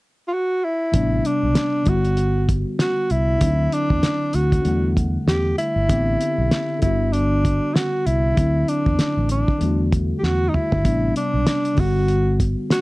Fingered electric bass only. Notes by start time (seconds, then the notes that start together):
0.94 A1
1.43 B1
1.87 G1
3.11 C2
3.41 D2
3.90 E2
4.34 D2
4.65 E2
5.27 E2
5.76 G1
5.90 A1
6.38 B1
6.83 G1
8.07 C2
8.37 D2
8.86 E2
9.00 muted fingered electric bass stroke
9.17 A1
9.61 E2
10.23 E2
10.72 G1
10.85 A1
11.34 B1
11.78 G1